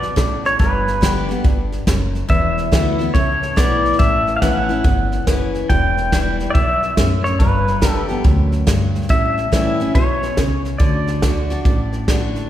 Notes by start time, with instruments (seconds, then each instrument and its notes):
Already playing: upright bass B1, steel-string acoustic guitar B2, pedal steel guitar D5
0.02 snare
0.16 upright bass A1, steel-string acoustic guitar A2, kick, snare, hi-hat pedal
0.45 pedal steel guitar C#5, snare
0.59 upright bass G1, steel-string acoustic guitar G2, pedal steel guitar B4, kick, snare
0.87 snare
1.01 steel-string acoustic guitar D3 G3 B3 G4, kick, snare, hi-hat pedal
1.29 steel-string acoustic guitar B3 G4, snare
1.44 upright bass G1, steel-string acoustic guitar G2, kick, snare
1.72 snare
1.87 upright bass F#1, steel-string acoustic guitar F#2, kick, snare, hi-hat pedal
2.15 snare
2.29 upright bass E1, steel-string acoustic guitar E2, pedal steel guitar E5, kick, snare
2.58 snare
2.72 upright bass D2, steel-string acoustic guitar E3 A3 B3 E4, kick, snare, hi-hat pedal
2.99 steel-string acoustic guitar B3 E4, snare
3.14 upright bass C#2, steel-string acoustic guitar A2, pedal steel guitar C#5, kick, snare
3.43 snare
3.56 upright bass B1, steel-string acoustic guitar E3 A3 B3 E4, pedal steel guitar D5, kick, snare, hi-hat pedal
3.85 snare
3.93 snare
3.99 upright bass A1, steel-string acoustic guitar A2, pedal steel guitar E5, kick, snare
4.27 snare
4.37 pedal steel guitar F5
4.42 upright bass A1, steel-string acoustic guitar E3 B3 C#4 E4, pedal steel guitar F#5, kick, snare, hi-hat pedal
4.69 steel-string acoustic guitar C#4 E4, snare
4.84 upright bass G1, steel-string acoustic guitar E2, kick, snare
5.12 snare
5.27 upright bass F#1, steel-string acoustic guitar E3 B3 C#4 E4, kick, snare, hi-hat pedal
5.55 snare
5.69 upright bass E1, steel-string acoustic guitar E2, pedal steel guitar G5, kick, snare
5.97 snare
6.12 steel-string acoustic guitar E3 G3 B3 E4, kick, snare, hi-hat pedal
6.40 snare
6.50 pedal steel guitar D5 E5
6.55 upright bass B1, steel-string acoustic guitar E2, kick, snare
6.83 snare
6.97 upright bass A1, steel-string acoustic guitar F#2, kick, snare, hi-hat pedal
7.24 pedal steel guitar C#5, snare
7.39 upright bass G1, steel-string acoustic guitar G2, pedal steel guitar B4, kick, snare
7.67 snare
7.81 steel-string acoustic guitar D3 G3 B3 G4, kick, snare, hi-hat pedal
7.89 pedal steel guitar A4
8.09 steel-string acoustic guitar B3 G4, snare
8.24 upright bass D2, steel-string acoustic guitar F#2, kick, snare
8.52 snare
8.67 steel-string acoustic guitar G2, kick, snare, hi-hat pedal
8.95 snare
9.02 snare
9.09 upright bass A1, steel-string acoustic guitar A2, pedal steel guitar E5, kick, snare
9.38 snare
9.52 upright bass A1, steel-string acoustic guitar E3 G3 C#4 E4, kick, snare, hi-hat pedal
9.80 steel-string acoustic guitar C#4 E4, snare
9.95 upright bass B1, steel-string acoustic guitar B2, pedal steel guitar C#5, kick, snare
10.23 snare
10.37 upright bass C#2, steel-string acoustic guitar C#3, kick, snare, hi-hat pedal
10.65 snare
10.78 upright bass D2, steel-string acoustic guitar D3, pedal steel guitar D5, kick, snare
11.07 snare
11.22 steel-string acoustic guitar D3 A3 D4 F#4, kick, snare, hi-hat pedal
11.50 steel-string acoustic guitar D4 F#4, snare
11.65 upright bass A1, steel-string acoustic guitar A2, kick, snare
11.93 snare
12.08 steel-string acoustic guitar D3 A3 D4 F#4, kick, snare, hi-hat pedal
12.35 snare